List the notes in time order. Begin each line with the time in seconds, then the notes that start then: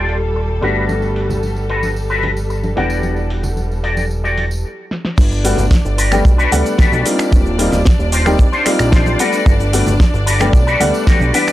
Already playing: D#1 G3 A#3 C4 D#4 F4 G4 A4 D5
0.09 open hi-hat
0.35 muted clean electric guitar stroke
0.49 muted clean electric guitar stroke
0.61 G1 G3 A3 B3 D4 F#4 A4 B4, open hi-hat
0.89 tambourine, high conga
1.02 tambourine
1.16 open hi-hat
1.30 tambourine, low conga
1.43 tambourine, high conga
1.56 muted clean electric guitar stroke, tambourine
1.69 F#4 A4 B4, open hi-hat
1.83 tambourine, high conga
1.96 tambourine
2.10 F#4 A4 B4, tambourine
2.23 open hi-hat, high conga, low conga
2.37 tambourine
2.50 muted clean electric guitar stroke, tambourine
2.63 muted clean electric guitar stroke, tambourine, high conga
2.76 E1 E3 G3 B3 D4 F#4 G4 D5 F#5, open hi-hat
2.90 tambourine
3.03 tambourine, high conga
3.16 tambourine
3.30 open hi-hat
3.43 tambourine, low conga
3.57 tambourine, high conga
3.70 muted clean electric guitar stroke, tambourine
3.83 F#4 G4 D5, open hi-hat
3.97 tambourine, high conga
4.11 tambourine
4.24 F#4 G4 D5, tambourine
4.38 open hi-hat, high conga
4.51 tambourine
4.91 snare
5.05 snare
5.18 G1 D4 D5, muted clean electric guitar stroke, kick, crash, tambourine, high conga, shaker
5.31 muted clean electric guitar stroke, tambourine, shaker
5.44 G3 A3 B3 D4 F#4, open hi-hat, shaker
5.58 G1, tambourine, low conga, shaker
5.71 muted clean electric guitar stroke, kick, snare, tambourine, high conga, shaker
5.85 G1, muted clean electric guitar stroke, tambourine, shaker
5.98 F#4 G4 A4 B4, open hi-hat, shaker
6.12 G3 A3 B3 D4 G4, finger snap, tambourine, high conga, shaker
6.25 B1, kick, tambourine, shaker
6.38 F#4 G4 A4 B4, tambourine, shaker
6.51 D2 G3 A3 B3 D4 F#5, open hi-hat, high conga, low conga, shaker
6.65 muted clean electric guitar stroke, tambourine, shaker
6.78 F#4 G4 A4 B4, kick, snare, tambourine, shaker
6.92 B1, tambourine, high conga, shaker
7.05 G3 A#3 C4 D#4 F4, open hi-hat, shaker
7.19 finger snap, tambourine, shaker
7.31 D#1, muted clean electric guitar stroke, kick, tambourine, high conga, shaker
7.46 muted clean electric guitar stroke, tambourine, shaker
7.58 G3 A#3 C4 D#4 F4, open hi-hat, shaker
7.72 D#1, snare, tambourine, low conga, shaker
7.85 muted clean electric guitar stroke, kick, snare, tambourine, high conga, shaker
7.99 D#1, muted clean electric guitar stroke, tambourine, shaker
8.12 D#4 F4 G4 C5, open hi-hat, shaker
8.25 G3 A#3 C4 D#4 G4, finger snap, tambourine, high conga, shaker
8.38 kick, tambourine, shaker
8.52 D#4 F4 G4 C5, tambourine, shaker
8.65 G3 A#3 C4 D#4 F4, finger snap, open hi-hat, high conga, shaker
8.79 A#1, finger snap, tambourine, shaker
8.92 D#4 F4 G4 C5, kick, snare, tambourine, shaker
9.06 tambourine, high conga, shaker
9.19 G3 A3 B3 D4 F#4 G4 A4 B4 F#5, open hi-hat, shaker
9.33 tambourine, shaker
9.46 G1, kick, tambourine, high conga, shaker
9.60 muted clean electric guitar stroke, tambourine, shaker
9.72 G3 A3 B3 D4 F#4, open hi-hat, shaker
9.86 G1, tambourine, low conga, shaker
10.00 muted clean electric guitar stroke, kick, snare, tambourine, high conga, shaker
10.13 G1, muted clean electric guitar stroke, tambourine, shaker
10.26 F#4 G4 A4 B4, open hi-hat, shaker
10.39 G3 A3 B3 D4 G4, finger snap, tambourine, high conga, shaker
10.53 B1, kick, tambourine, shaker
10.67 F#4 G4 A4 B4, tambourine, shaker
10.80 D2 G3 A3 B3 D4 F#5, open hi-hat, high conga, low conga, shaker
10.94 muted clean electric guitar stroke, tambourine, shaker
11.07 F#4 G4 A4 B4, kick, snare, tambourine, shaker
11.20 B1, tambourine, high conga, shaker
11.33 E3 G3 B3 D4 E4 F#4 G4 D5 F#5, open hi-hat, shaker
11.47 finger snap, tambourine, shaker